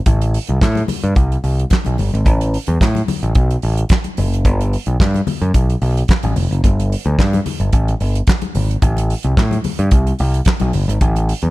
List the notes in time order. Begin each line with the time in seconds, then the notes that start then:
0.06 A1, kick, closed hi-hat, muted conga, low conga
0.22 closed hi-hat
0.34 open hi-hat
0.47 C2, closed hi-hat, high conga
0.61 A2, kick, snare, clap, closed hi-hat, muted conga
0.75 closed hi-hat, muted conga, high conga
0.88 open hi-hat, high conga, low conga
1.04 G2, closed hi-hat
1.15 C2, kick, closed hi-hat, muted conga
1.32 closed hi-hat
1.44 C2, open hi-hat
1.59 closed hi-hat
1.70 kick, snare, clap, closed hi-hat, muted conga
1.85 B1, closed hi-hat, high conga
1.98 G1, open hi-hat, low conga
2.14 G#1, closed hi-hat
2.25 A1, kick, closed hi-hat, muted conga, low conga
2.41 closed hi-hat
2.54 open hi-hat
2.67 E2, closed hi-hat, high conga
2.81 A2, kick, snare, clap, closed hi-hat
2.95 closed hi-hat, muted conga, high conga
3.08 open hi-hat, high conga, low conga
3.23 A1, closed hi-hat
3.35 B1, kick, closed hi-hat, muted conga
3.51 closed hi-hat, muted conga
3.62 A1, open hi-hat
3.77 closed hi-hat
3.89 kick, snare, clap, closed hi-hat, muted conga
4.04 closed hi-hat, high conga
4.17 F#1, open hi-hat, low conga
4.34 closed hi-hat
4.45 G1, kick, closed hi-hat, muted conga, low conga
4.61 closed hi-hat
4.73 open hi-hat
4.86 B1, closed hi-hat, high conga
5.00 G2, kick, snare, clap, closed hi-hat, muted conga
5.14 closed hi-hat, high conga
5.27 open hi-hat, high conga, low conga
5.42 F#2, closed hi-hat
5.54 B1, kick, closed hi-hat, muted conga
5.70 closed hi-hat
5.82 B1, open hi-hat
5.97 closed hi-hat
6.08 kick, snare, clap, closed hi-hat, muted conga
6.23 A1, closed hi-hat, high conga
6.36 F1, open hi-hat, low conga
6.51 F#1, closed hi-hat
6.64 G1, kick, closed hi-hat, low conga
6.80 closed hi-hat
6.92 open hi-hat
7.04 D2, closed hi-hat, high conga
7.19 G2, kick, snare, clap, closed hi-hat, muted conga
7.33 closed hi-hat, muted conga, high conga
7.46 open hi-hat, high conga, low conga
7.60 G1, closed hi-hat
7.73 A1, kick, closed hi-hat, muted conga
7.88 closed hi-hat, muted conga
8.00 G1, open hi-hat
8.15 closed hi-hat
8.27 kick, snare, clap, closed hi-hat, muted conga
8.41 closed hi-hat, muted conga, high conga
8.55 G#1, open hi-hat, low conga
8.71 closed hi-hat
8.82 A1, kick, closed hi-hat, low conga
8.97 closed hi-hat, muted conga
9.10 open hi-hat
9.23 C2, closed hi-hat, high conga
9.37 A2, kick, snare, clap, closed hi-hat
9.51 closed hi-hat, muted conga, high conga
9.64 open hi-hat, high conga, low conga
9.79 G2, closed hi-hat
9.91 C2, kick, closed hi-hat, muted conga
10.07 closed hi-hat, muted conga
10.19 C2, open hi-hat
10.34 closed hi-hat
10.45 kick, snare, clap, closed hi-hat, muted conga
10.60 B1, closed hi-hat, muted conga, high conga
10.73 G1, open hi-hat, low conga
10.88 G#1, closed hi-hat
11.01 A1, kick, closed hi-hat, muted conga, low conga
11.16 closed hi-hat, muted conga
11.29 open hi-hat
11.42 E2, closed hi-hat, high conga